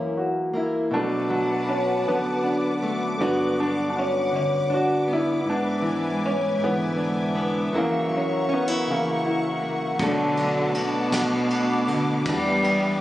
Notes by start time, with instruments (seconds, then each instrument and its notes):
Already playing: upright bass F#2, steel-string acoustic guitar F#2 A#3 E4 A#4, grand piano E3 A#3 C#4
0.17 grand piano F#4
0.54 steel-string acoustic guitar A#3 E4 A#4, grand piano E4
0.90 steel-string acoustic guitar B2, grand piano F#3 D4, string section B4 F#5 A5 D6
0.95 grand piano A3
1.30 steel-string acoustic guitar F#3
1.69 grand piano C#4
2.06 steel-string acoustic guitar F#2, grand piano D3 F#3 B3
2.44 steel-string acoustic guitar D4
2.83 steel-string acoustic guitar A3
3.18 steel-string acoustic guitar G2 B3 D4 F#4, grand piano D3 F#3 B3, string section B4 F#5
3.60 grand piano D4
3.90 grand piano D4
3.99 grand piano C#4
4.32 steel-string acoustic guitar D3, grand piano C#4
4.70 steel-string acoustic guitar D4
4.74 grand piano F#4
5.08 steel-string acoustic guitar B3
5.13 grand piano E4
5.41 steel-string acoustic guitar G#2, grand piano E4
5.46 string section G#3 E5 G#5, grand piano B3 D4
5.82 steel-string acoustic guitar E3
6.26 grand piano C#4
6.58 steel-string acoustic guitar G#2
6.64 grand piano D3 E3 B3
6.97 steel-string acoustic guitar D4
7.35 steel-string acoustic guitar B3
7.71 steel-string acoustic guitar F#2 F#3 E4 A#4, string section A#4 F#5 C#6
7.78 grand piano C#3 E3 A#3
8.10 steel-string acoustic guitar F#3
8.17 grand piano C#4
8.49 steel-string acoustic guitar C#4
8.54 grand piano B3
8.68 steel-string acoustic guitar E4
8.87 steel-string acoustic guitar C#3, grand piano C#3 E3
8.91 grand piano A#3
9.26 steel-string acoustic guitar E4
9.62 steel-string acoustic guitar A#3
9.99 upright bass B1, steel-string acoustic guitar B2 F#3 A3 D4 A4, cello D3, vibraphone A3, string section B4 A5 D6, kick, ride
10.04 grand piano F#3 A3 D4
10.37 steel-string acoustic guitar F#3, ride
10.74 cello B2, vibraphone D4, ride
11.12 steel-string acoustic guitar B2, vibraphone F#4, kick, snare, ride
11.50 vibraphone A3 D4 F#4, ride
11.87 steel-string acoustic guitar D3, ride
12.25 upright bass E2, steel-string acoustic guitar E3, cello G3, vibraphone B3, grand piano B3, string section E5 G5, kick, ride
12.29 grand piano G3 D4
12.64 steel-string acoustic guitar B3, ride